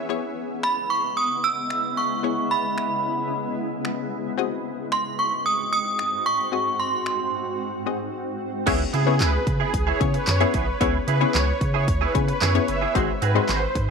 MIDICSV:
0, 0, Header, 1, 9, 480
1, 0, Start_track
1, 0, Key_signature, 4, "minor"
1, 0, Tempo, 535714
1, 86, Time_signature, 4, 2, 24, 8
1, 12455, End_track
2, 0, Start_track
2, 0, Title_t, "Synth bell"
2, 0, Program_c, 0, 98
2, 568, Note_on_c, 0, 83, 79
2, 807, Note_on_c, 0, 85, 83
2, 814, Note_off_c, 0, 83, 0
2, 1048, Note_on_c, 0, 87, 97
2, 1054, Note_off_c, 0, 85, 0
2, 1289, Note_on_c, 0, 88, 99
2, 1294, Note_off_c, 0, 87, 0
2, 1768, Note_on_c, 0, 85, 89
2, 1782, Note_off_c, 0, 88, 0
2, 2213, Note_off_c, 0, 85, 0
2, 2249, Note_on_c, 0, 83, 77
2, 2932, Note_off_c, 0, 83, 0
2, 4410, Note_on_c, 0, 84, 89
2, 4517, Note_off_c, 0, 84, 0
2, 4649, Note_on_c, 0, 85, 88
2, 4890, Note_on_c, 0, 87, 104
2, 4894, Note_off_c, 0, 85, 0
2, 5111, Note_off_c, 0, 87, 0
2, 5130, Note_on_c, 0, 87, 106
2, 5574, Note_off_c, 0, 87, 0
2, 5609, Note_on_c, 0, 85, 93
2, 6089, Note_on_c, 0, 84, 80
2, 6101, Note_off_c, 0, 85, 0
2, 6771, Note_off_c, 0, 84, 0
2, 12455, End_track
3, 0, Start_track
3, 0, Title_t, "Supersaw synth"
3, 0, Program_c, 1, 81
3, 8005, Note_on_c, 1, 68, 78
3, 8088, Note_off_c, 1, 68, 0
3, 8244, Note_on_c, 1, 71, 91
3, 8327, Note_off_c, 1, 71, 0
3, 8604, Note_on_c, 1, 68, 80
3, 8687, Note_off_c, 1, 68, 0
3, 8844, Note_on_c, 1, 73, 83
3, 8927, Note_off_c, 1, 73, 0
3, 9085, Note_on_c, 1, 71, 76
3, 9168, Note_off_c, 1, 71, 0
3, 9204, Note_on_c, 1, 73, 90
3, 9287, Note_off_c, 1, 73, 0
3, 9444, Note_on_c, 1, 71, 80
3, 9527, Note_off_c, 1, 71, 0
3, 9924, Note_on_c, 1, 71, 93
3, 10007, Note_off_c, 1, 71, 0
3, 10163, Note_on_c, 1, 73, 96
3, 10246, Note_off_c, 1, 73, 0
3, 10525, Note_on_c, 1, 73, 74
3, 10608, Note_off_c, 1, 73, 0
3, 10765, Note_on_c, 1, 71, 77
3, 10847, Note_off_c, 1, 71, 0
3, 11004, Note_on_c, 1, 71, 78
3, 11087, Note_off_c, 1, 71, 0
3, 11123, Note_on_c, 1, 73, 83
3, 11207, Note_off_c, 1, 73, 0
3, 11365, Note_on_c, 1, 76, 87
3, 11448, Note_off_c, 1, 76, 0
3, 11845, Note_on_c, 1, 71, 80
3, 11928, Note_off_c, 1, 71, 0
3, 12087, Note_on_c, 1, 72, 84
3, 12169, Note_off_c, 1, 72, 0
3, 12455, End_track
4, 0, Start_track
4, 0, Title_t, "Clean electric guitar"
4, 0, Program_c, 2, 27
4, 7763, Note_on_c, 2, 59, 85
4, 7770, Note_on_c, 2, 64, 96
4, 7775, Note_on_c, 2, 68, 101
4, 7905, Note_off_c, 2, 59, 0
4, 7908, Note_off_c, 2, 64, 0
4, 7911, Note_off_c, 2, 68, 0
4, 8003, Note_on_c, 2, 59, 70
4, 8010, Note_on_c, 2, 64, 74
4, 8016, Note_on_c, 2, 68, 74
4, 8113, Note_off_c, 2, 68, 0
4, 8114, Note_off_c, 2, 59, 0
4, 8118, Note_off_c, 2, 64, 0
4, 8123, Note_on_c, 2, 68, 64
4, 8131, Note_on_c, 2, 64, 57
4, 8136, Note_on_c, 2, 59, 54
4, 8232, Note_off_c, 2, 59, 0
4, 8235, Note_off_c, 2, 68, 0
4, 8238, Note_off_c, 2, 64, 0
4, 8242, Note_on_c, 2, 59, 85
4, 8249, Note_on_c, 2, 64, 87
4, 8255, Note_on_c, 2, 68, 88
4, 8352, Note_off_c, 2, 68, 0
4, 8361, Note_off_c, 2, 64, 0
4, 8385, Note_off_c, 2, 59, 0
4, 8601, Note_on_c, 2, 68, 74
4, 8608, Note_on_c, 2, 64, 71
4, 8614, Note_on_c, 2, 59, 63
4, 8712, Note_off_c, 2, 59, 0
4, 8713, Note_off_c, 2, 68, 0
4, 8717, Note_off_c, 2, 64, 0
4, 8842, Note_on_c, 2, 68, 97
4, 8848, Note_on_c, 2, 64, 90
4, 8853, Note_on_c, 2, 59, 72
4, 8952, Note_off_c, 2, 59, 0
4, 8957, Note_off_c, 2, 64, 0
4, 8961, Note_off_c, 2, 68, 0
4, 9322, Note_on_c, 2, 68, 91
4, 9329, Note_on_c, 2, 64, 83
4, 9334, Note_on_c, 2, 59, 80
4, 9430, Note_off_c, 2, 59, 0
4, 9436, Note_off_c, 2, 64, 0
4, 9440, Note_on_c, 2, 59, 65
4, 9442, Note_off_c, 2, 68, 0
4, 9447, Note_on_c, 2, 64, 67
4, 9452, Note_on_c, 2, 68, 71
4, 9552, Note_off_c, 2, 68, 0
4, 9553, Note_off_c, 2, 59, 0
4, 9556, Note_off_c, 2, 64, 0
4, 9682, Note_on_c, 2, 59, 89
4, 9689, Note_on_c, 2, 64, 96
4, 9694, Note_on_c, 2, 68, 99
4, 9825, Note_off_c, 2, 59, 0
4, 9828, Note_off_c, 2, 64, 0
4, 9830, Note_off_c, 2, 68, 0
4, 9923, Note_on_c, 2, 59, 63
4, 9929, Note_on_c, 2, 64, 73
4, 9934, Note_on_c, 2, 68, 78
4, 10031, Note_off_c, 2, 68, 0
4, 10034, Note_off_c, 2, 59, 0
4, 10037, Note_off_c, 2, 64, 0
4, 10042, Note_on_c, 2, 68, 65
4, 10049, Note_on_c, 2, 64, 60
4, 10054, Note_on_c, 2, 59, 54
4, 10150, Note_off_c, 2, 59, 0
4, 10154, Note_off_c, 2, 68, 0
4, 10157, Note_off_c, 2, 64, 0
4, 10161, Note_on_c, 2, 59, 86
4, 10168, Note_on_c, 2, 64, 99
4, 10173, Note_on_c, 2, 68, 96
4, 10271, Note_off_c, 2, 68, 0
4, 10280, Note_off_c, 2, 64, 0
4, 10304, Note_off_c, 2, 59, 0
4, 10519, Note_on_c, 2, 68, 78
4, 10526, Note_on_c, 2, 64, 73
4, 10532, Note_on_c, 2, 59, 61
4, 10632, Note_off_c, 2, 59, 0
4, 10632, Note_off_c, 2, 68, 0
4, 10636, Note_off_c, 2, 64, 0
4, 10760, Note_on_c, 2, 68, 86
4, 10767, Note_on_c, 2, 64, 79
4, 10772, Note_on_c, 2, 59, 73
4, 10871, Note_off_c, 2, 59, 0
4, 10875, Note_off_c, 2, 64, 0
4, 10879, Note_off_c, 2, 68, 0
4, 11120, Note_on_c, 2, 59, 87
4, 11127, Note_on_c, 2, 64, 96
4, 11133, Note_on_c, 2, 68, 106
4, 11231, Note_off_c, 2, 68, 0
4, 11240, Note_off_c, 2, 64, 0
4, 11264, Note_off_c, 2, 59, 0
4, 11481, Note_on_c, 2, 68, 64
4, 11488, Note_on_c, 2, 64, 60
4, 11493, Note_on_c, 2, 59, 53
4, 11594, Note_off_c, 2, 68, 0
4, 11597, Note_off_c, 2, 59, 0
4, 11597, Note_off_c, 2, 64, 0
4, 11601, Note_on_c, 2, 60, 87
4, 11607, Note_on_c, 2, 66, 93
4, 11613, Note_on_c, 2, 68, 100
4, 11744, Note_off_c, 2, 60, 0
4, 11747, Note_off_c, 2, 66, 0
4, 11750, Note_off_c, 2, 68, 0
4, 11841, Note_on_c, 2, 60, 77
4, 11848, Note_on_c, 2, 66, 84
4, 11854, Note_on_c, 2, 68, 86
4, 11952, Note_off_c, 2, 68, 0
4, 11954, Note_off_c, 2, 60, 0
4, 11957, Note_off_c, 2, 66, 0
4, 11963, Note_on_c, 2, 68, 71
4, 11969, Note_on_c, 2, 66, 66
4, 11975, Note_on_c, 2, 60, 58
4, 12072, Note_off_c, 2, 60, 0
4, 12074, Note_off_c, 2, 68, 0
4, 12078, Note_off_c, 2, 66, 0
4, 12083, Note_on_c, 2, 60, 78
4, 12089, Note_on_c, 2, 66, 83
4, 12095, Note_on_c, 2, 68, 94
4, 12193, Note_off_c, 2, 68, 0
4, 12201, Note_off_c, 2, 66, 0
4, 12225, Note_off_c, 2, 60, 0
4, 12455, End_track
5, 0, Start_track
5, 0, Title_t, "Synth pluck"
5, 0, Program_c, 3, 84
5, 81, Note_on_c, 3, 59, 78
5, 83, Note_on_c, 3, 64, 72
5, 87, Note_on_c, 3, 68, 71
5, 90, Note_on_c, 3, 73, 87
5, 1967, Note_off_c, 3, 59, 0
5, 1969, Note_off_c, 3, 64, 0
5, 1970, Note_off_c, 3, 68, 0
5, 1972, Note_off_c, 3, 73, 0
5, 1999, Note_on_c, 3, 59, 65
5, 2002, Note_on_c, 3, 64, 58
5, 2005, Note_on_c, 3, 68, 62
5, 2008, Note_on_c, 3, 73, 75
5, 3887, Note_off_c, 3, 59, 0
5, 3888, Note_off_c, 3, 64, 0
5, 3890, Note_off_c, 3, 68, 0
5, 3891, Note_off_c, 3, 73, 0
5, 3921, Note_on_c, 3, 60, 80
5, 3924, Note_on_c, 3, 66, 73
5, 3927, Note_on_c, 3, 68, 72
5, 3931, Note_on_c, 3, 75, 83
5, 5807, Note_off_c, 3, 60, 0
5, 5809, Note_off_c, 3, 66, 0
5, 5811, Note_off_c, 3, 68, 0
5, 5812, Note_off_c, 3, 75, 0
5, 5841, Note_on_c, 3, 60, 64
5, 5844, Note_on_c, 3, 66, 62
5, 5847, Note_on_c, 3, 68, 61
5, 5850, Note_on_c, 3, 75, 73
5, 7019, Note_off_c, 3, 60, 0
5, 7021, Note_off_c, 3, 66, 0
5, 7022, Note_off_c, 3, 68, 0
5, 7024, Note_off_c, 3, 75, 0
5, 7044, Note_on_c, 3, 60, 59
5, 7046, Note_on_c, 3, 66, 54
5, 7047, Note_on_c, 3, 68, 55
5, 7049, Note_on_c, 3, 75, 64
5, 7525, Note_off_c, 3, 60, 0
5, 7526, Note_off_c, 3, 66, 0
5, 7526, Note_off_c, 3, 68, 0
5, 7527, Note_off_c, 3, 75, 0
5, 7763, Note_on_c, 3, 59, 99
5, 7763, Note_on_c, 3, 61, 85
5, 7766, Note_on_c, 3, 64, 88
5, 7766, Note_on_c, 3, 68, 89
5, 7767, Note_on_c, 3, 73, 102
5, 8067, Note_off_c, 3, 59, 0
5, 8067, Note_off_c, 3, 61, 0
5, 8068, Note_off_c, 3, 64, 0
5, 8068, Note_off_c, 3, 68, 0
5, 8069, Note_off_c, 3, 73, 0
5, 8123, Note_on_c, 3, 59, 80
5, 8123, Note_on_c, 3, 61, 74
5, 8125, Note_on_c, 3, 64, 74
5, 8126, Note_on_c, 3, 68, 69
5, 8127, Note_on_c, 3, 73, 82
5, 8830, Note_off_c, 3, 59, 0
5, 8830, Note_off_c, 3, 61, 0
5, 8831, Note_off_c, 3, 64, 0
5, 8831, Note_off_c, 3, 68, 0
5, 8832, Note_off_c, 3, 73, 0
5, 8962, Note_on_c, 3, 59, 81
5, 8964, Note_on_c, 3, 61, 73
5, 8965, Note_on_c, 3, 64, 72
5, 8966, Note_on_c, 3, 68, 71
5, 8967, Note_on_c, 3, 73, 88
5, 9266, Note_off_c, 3, 59, 0
5, 9267, Note_off_c, 3, 61, 0
5, 9268, Note_off_c, 3, 64, 0
5, 9268, Note_off_c, 3, 68, 0
5, 9268, Note_off_c, 3, 73, 0
5, 9321, Note_on_c, 3, 59, 80
5, 9323, Note_on_c, 3, 61, 75
5, 9324, Note_on_c, 3, 64, 75
5, 9325, Note_on_c, 3, 68, 74
5, 9327, Note_on_c, 3, 73, 88
5, 9626, Note_off_c, 3, 59, 0
5, 9627, Note_off_c, 3, 61, 0
5, 9627, Note_off_c, 3, 64, 0
5, 9628, Note_off_c, 3, 68, 0
5, 9629, Note_off_c, 3, 73, 0
5, 9681, Note_on_c, 3, 59, 101
5, 9683, Note_on_c, 3, 61, 88
5, 9684, Note_on_c, 3, 64, 90
5, 9685, Note_on_c, 3, 68, 88
5, 9686, Note_on_c, 3, 73, 108
5, 9986, Note_off_c, 3, 59, 0
5, 9987, Note_off_c, 3, 61, 0
5, 9987, Note_off_c, 3, 64, 0
5, 9988, Note_off_c, 3, 68, 0
5, 9988, Note_off_c, 3, 73, 0
5, 10041, Note_on_c, 3, 59, 79
5, 10042, Note_on_c, 3, 61, 74
5, 10043, Note_on_c, 3, 64, 73
5, 10045, Note_on_c, 3, 68, 70
5, 10046, Note_on_c, 3, 73, 86
5, 10749, Note_off_c, 3, 59, 0
5, 10749, Note_off_c, 3, 61, 0
5, 10750, Note_off_c, 3, 64, 0
5, 10751, Note_off_c, 3, 68, 0
5, 10751, Note_off_c, 3, 73, 0
5, 10882, Note_on_c, 3, 59, 82
5, 10883, Note_on_c, 3, 61, 76
5, 10884, Note_on_c, 3, 64, 72
5, 10885, Note_on_c, 3, 68, 76
5, 10887, Note_on_c, 3, 73, 85
5, 11186, Note_off_c, 3, 59, 0
5, 11187, Note_off_c, 3, 61, 0
5, 11187, Note_off_c, 3, 64, 0
5, 11188, Note_off_c, 3, 68, 0
5, 11189, Note_off_c, 3, 73, 0
5, 11244, Note_on_c, 3, 59, 80
5, 11244, Note_on_c, 3, 61, 74
5, 11246, Note_on_c, 3, 64, 71
5, 11247, Note_on_c, 3, 68, 75
5, 11248, Note_on_c, 3, 73, 88
5, 11547, Note_off_c, 3, 59, 0
5, 11547, Note_off_c, 3, 61, 0
5, 11548, Note_off_c, 3, 64, 0
5, 11548, Note_off_c, 3, 68, 0
5, 11549, Note_off_c, 3, 73, 0
5, 11603, Note_on_c, 3, 56, 93
5, 11605, Note_on_c, 3, 60, 88
5, 11605, Note_on_c, 3, 63, 88
5, 11606, Note_on_c, 3, 66, 88
5, 11608, Note_on_c, 3, 72, 107
5, 11907, Note_off_c, 3, 56, 0
5, 11908, Note_off_c, 3, 60, 0
5, 11908, Note_off_c, 3, 63, 0
5, 11908, Note_off_c, 3, 66, 0
5, 11909, Note_off_c, 3, 72, 0
5, 11963, Note_on_c, 3, 56, 79
5, 11964, Note_on_c, 3, 60, 72
5, 11965, Note_on_c, 3, 63, 74
5, 11966, Note_on_c, 3, 66, 73
5, 11968, Note_on_c, 3, 72, 86
5, 12455, Note_off_c, 3, 56, 0
5, 12455, Note_off_c, 3, 60, 0
5, 12455, Note_off_c, 3, 63, 0
5, 12455, Note_off_c, 3, 66, 0
5, 12455, Note_off_c, 3, 72, 0
5, 12455, End_track
6, 0, Start_track
6, 0, Title_t, "Ambient pad"
6, 0, Program_c, 4, 92
6, 84, Note_on_c, 4, 56, 69
6, 84, Note_on_c, 4, 59, 68
6, 85, Note_on_c, 4, 64, 81
6, 86, Note_on_c, 4, 49, 76
6, 3889, Note_off_c, 4, 59, 0
6, 3889, Note_off_c, 4, 64, 0
6, 3890, Note_off_c, 4, 49, 0
6, 3928, Note_on_c, 4, 44, 74
6, 3928, Note_on_c, 4, 60, 66
6, 3928, Note_on_c, 4, 66, 80
6, 7491, Note_off_c, 4, 44, 0
6, 7491, Note_off_c, 4, 60, 0
6, 7491, Note_off_c, 4, 66, 0
6, 7729, Note_off_c, 4, 56, 0
6, 12455, End_track
7, 0, Start_track
7, 0, Title_t, "Sub bass"
7, 0, Program_c, 5, 38
7, 7766, Note_on_c, 5, 37, 110
7, 7922, Note_off_c, 5, 37, 0
7, 8007, Note_on_c, 5, 49, 99
7, 8246, Note_on_c, 5, 37, 106
7, 8259, Note_off_c, 5, 49, 0
7, 8402, Note_off_c, 5, 37, 0
7, 8484, Note_on_c, 5, 49, 99
7, 8640, Note_off_c, 5, 49, 0
7, 8724, Note_on_c, 5, 37, 116
7, 8881, Note_off_c, 5, 37, 0
7, 8967, Note_on_c, 5, 49, 115
7, 9123, Note_off_c, 5, 49, 0
7, 9205, Note_on_c, 5, 42, 107
7, 9361, Note_off_c, 5, 42, 0
7, 9445, Note_on_c, 5, 35, 93
7, 9601, Note_off_c, 5, 35, 0
7, 9685, Note_on_c, 5, 37, 107
7, 9841, Note_off_c, 5, 37, 0
7, 9924, Note_on_c, 5, 49, 112
7, 10080, Note_off_c, 5, 49, 0
7, 10165, Note_on_c, 5, 37, 109
7, 10321, Note_off_c, 5, 37, 0
7, 10403, Note_on_c, 5, 49, 95
7, 10644, Note_on_c, 5, 37, 117
7, 10658, Note_off_c, 5, 49, 0
7, 10801, Note_off_c, 5, 37, 0
7, 10887, Note_on_c, 5, 49, 108
7, 11043, Note_off_c, 5, 49, 0
7, 11125, Note_on_c, 5, 42, 106
7, 11282, Note_off_c, 5, 42, 0
7, 11365, Note_on_c, 5, 30, 91
7, 11521, Note_off_c, 5, 30, 0
7, 11605, Note_on_c, 5, 32, 118
7, 11761, Note_off_c, 5, 32, 0
7, 11846, Note_on_c, 5, 44, 106
7, 12002, Note_off_c, 5, 44, 0
7, 12086, Note_on_c, 5, 32, 114
7, 12242, Note_off_c, 5, 32, 0
7, 12324, Note_on_c, 5, 44, 102
7, 12455, Note_off_c, 5, 44, 0
7, 12455, End_track
8, 0, Start_track
8, 0, Title_t, "Muted clean electric guitar strokes"
8, 8363, Note_on_c, 9, 29, 52
8, 8453, Note_off_c, 9, 29, 0
8, 8482, Note_on_c, 9, 29, 44
8, 8572, Note_off_c, 9, 29, 0
8, 8722, Note_on_c, 9, 29, 44
8, 8812, Note_off_c, 9, 29, 0
8, 8963, Note_on_c, 9, 29, 41
8, 9052, Note_off_c, 9, 29, 0
8, 9084, Note_on_c, 9, 29, 53
8, 9173, Note_off_c, 9, 29, 0
8, 9203, Note_on_c, 9, 29, 50
8, 9292, Note_off_c, 9, 29, 0
8, 9563, Note_on_c, 9, 29, 48
8, 9652, Note_off_c, 9, 29, 0
8, 10282, Note_on_c, 9, 29, 52
8, 10371, Note_off_c, 9, 29, 0
8, 10402, Note_on_c, 9, 29, 43
8, 10491, Note_off_c, 9, 29, 0
8, 10881, Note_on_c, 9, 29, 55
8, 10971, Note_off_c, 9, 29, 0
8, 11001, Note_on_c, 9, 29, 55
8, 11091, Note_off_c, 9, 29, 0
8, 11242, Note_on_c, 9, 29, 58
8, 11331, Note_off_c, 9, 29, 0
8, 11361, Note_on_c, 9, 29, 41
8, 11451, Note_off_c, 9, 29, 0
8, 12204, Note_on_c, 9, 29, 51
8, 12293, Note_off_c, 9, 29, 0
8, 12323, Note_on_c, 9, 29, 50
8, 12413, Note_off_c, 9, 29, 0
8, 12455, End_track
9, 0, Start_track
9, 0, Title_t, "Drums"
9, 567, Note_on_c, 9, 26, 88
9, 657, Note_off_c, 9, 26, 0
9, 1527, Note_on_c, 9, 26, 97
9, 1616, Note_off_c, 9, 26, 0
9, 2488, Note_on_c, 9, 26, 96
9, 2578, Note_off_c, 9, 26, 0
9, 3448, Note_on_c, 9, 26, 99
9, 3537, Note_off_c, 9, 26, 0
9, 4408, Note_on_c, 9, 26, 94
9, 4497, Note_off_c, 9, 26, 0
9, 5368, Note_on_c, 9, 26, 101
9, 5457, Note_off_c, 9, 26, 0
9, 6327, Note_on_c, 9, 26, 91
9, 6417, Note_off_c, 9, 26, 0
9, 7766, Note_on_c, 9, 36, 114
9, 7766, Note_on_c, 9, 42, 97
9, 7766, Note_on_c, 9, 49, 108
9, 7856, Note_off_c, 9, 36, 0
9, 7856, Note_off_c, 9, 42, 0
9, 7856, Note_off_c, 9, 49, 0
9, 8007, Note_on_c, 9, 42, 79
9, 8097, Note_off_c, 9, 42, 0
9, 8248, Note_on_c, 9, 39, 107
9, 8249, Note_on_c, 9, 38, 90
9, 8249, Note_on_c, 9, 42, 90
9, 8337, Note_off_c, 9, 39, 0
9, 8338, Note_off_c, 9, 38, 0
9, 8338, Note_off_c, 9, 42, 0
9, 8484, Note_on_c, 9, 36, 95
9, 8485, Note_on_c, 9, 42, 80
9, 8573, Note_off_c, 9, 36, 0
9, 8574, Note_off_c, 9, 42, 0
9, 8725, Note_on_c, 9, 36, 96
9, 8726, Note_on_c, 9, 42, 105
9, 8814, Note_off_c, 9, 36, 0
9, 8815, Note_off_c, 9, 42, 0
9, 8967, Note_on_c, 9, 36, 87
9, 8967, Note_on_c, 9, 42, 84
9, 9057, Note_off_c, 9, 36, 0
9, 9057, Note_off_c, 9, 42, 0
9, 9087, Note_on_c, 9, 42, 62
9, 9176, Note_off_c, 9, 42, 0
9, 9205, Note_on_c, 9, 42, 106
9, 9206, Note_on_c, 9, 39, 119
9, 9207, Note_on_c, 9, 38, 92
9, 9295, Note_off_c, 9, 39, 0
9, 9295, Note_off_c, 9, 42, 0
9, 9296, Note_off_c, 9, 38, 0
9, 9324, Note_on_c, 9, 42, 48
9, 9413, Note_off_c, 9, 42, 0
9, 9442, Note_on_c, 9, 42, 85
9, 9445, Note_on_c, 9, 36, 108
9, 9532, Note_off_c, 9, 42, 0
9, 9535, Note_off_c, 9, 36, 0
9, 9685, Note_on_c, 9, 36, 117
9, 9685, Note_on_c, 9, 42, 98
9, 9774, Note_off_c, 9, 36, 0
9, 9774, Note_off_c, 9, 42, 0
9, 9926, Note_on_c, 9, 42, 83
9, 10016, Note_off_c, 9, 42, 0
9, 10167, Note_on_c, 9, 39, 112
9, 10168, Note_on_c, 9, 38, 84
9, 10168, Note_on_c, 9, 42, 87
9, 10256, Note_off_c, 9, 39, 0
9, 10257, Note_off_c, 9, 38, 0
9, 10257, Note_off_c, 9, 42, 0
9, 10403, Note_on_c, 9, 36, 95
9, 10404, Note_on_c, 9, 42, 83
9, 10493, Note_off_c, 9, 36, 0
9, 10494, Note_off_c, 9, 42, 0
9, 10644, Note_on_c, 9, 36, 99
9, 10644, Note_on_c, 9, 42, 103
9, 10734, Note_off_c, 9, 36, 0
9, 10734, Note_off_c, 9, 42, 0
9, 10887, Note_on_c, 9, 36, 92
9, 10887, Note_on_c, 9, 42, 83
9, 10977, Note_off_c, 9, 36, 0
9, 10977, Note_off_c, 9, 42, 0
9, 11007, Note_on_c, 9, 42, 64
9, 11097, Note_off_c, 9, 42, 0
9, 11126, Note_on_c, 9, 39, 120
9, 11126, Note_on_c, 9, 42, 103
9, 11128, Note_on_c, 9, 38, 94
9, 11216, Note_off_c, 9, 39, 0
9, 11216, Note_off_c, 9, 42, 0
9, 11217, Note_off_c, 9, 38, 0
9, 11245, Note_on_c, 9, 42, 48
9, 11335, Note_off_c, 9, 42, 0
9, 11364, Note_on_c, 9, 42, 84
9, 11454, Note_off_c, 9, 42, 0
9, 11605, Note_on_c, 9, 36, 114
9, 11605, Note_on_c, 9, 42, 95
9, 11695, Note_off_c, 9, 36, 0
9, 11695, Note_off_c, 9, 42, 0
9, 11845, Note_on_c, 9, 42, 85
9, 11935, Note_off_c, 9, 42, 0
9, 12086, Note_on_c, 9, 39, 104
9, 12087, Note_on_c, 9, 38, 87
9, 12087, Note_on_c, 9, 42, 86
9, 12176, Note_off_c, 9, 39, 0
9, 12177, Note_off_c, 9, 38, 0
9, 12177, Note_off_c, 9, 42, 0
9, 12324, Note_on_c, 9, 36, 96
9, 12324, Note_on_c, 9, 42, 83
9, 12413, Note_off_c, 9, 36, 0
9, 12414, Note_off_c, 9, 42, 0
9, 12455, End_track
0, 0, End_of_file